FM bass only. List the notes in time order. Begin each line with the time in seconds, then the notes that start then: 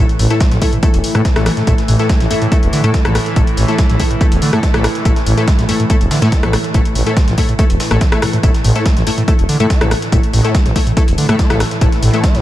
0.20 A1
0.52 A1
0.94 E1
1.15 A2
1.36 A1
1.67 A1
1.88 A1
2.21 A1
2.63 E1
2.84 A2
3.05 A1
3.36 A1
3.58 A1
3.90 A1
4.32 E1
4.53 A2
4.74 A1
5.05 A1
5.27 A1
5.59 A1
6.01 E1
6.22 A2
6.43 A1
6.74 A1
6.96 A1
7.28 A1
7.70 E1
7.91 A1
8.43 A1
8.65 A1
8.97 A1
9.39 E1
9.60 A2
9.81 A1
10.12 A1
10.34 A1
10.66 A1
11.08 E1
11.29 A2
11.50 A1
11.81 A1
12.03 A1
12.35 A1